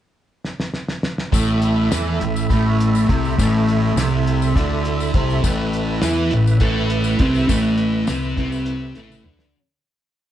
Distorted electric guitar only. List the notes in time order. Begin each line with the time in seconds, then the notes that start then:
1.32 A2 A3
1.91 E3 E4
2.21 A2
2.49 A2 A3
3.09 C3 C4
3.38 A2 A3
3.97 C3 C4
4.56 D3 D4
5.15 C3 C4
5.43 A2 A3
6.02 E3 E4
6.32 A2
6.60 A2 A3
7.20 C3 C4
7.48 A2 A3
8.08 C3 C4
8.38 C3 C4
8.96 A2 A3
9.25 D3 D4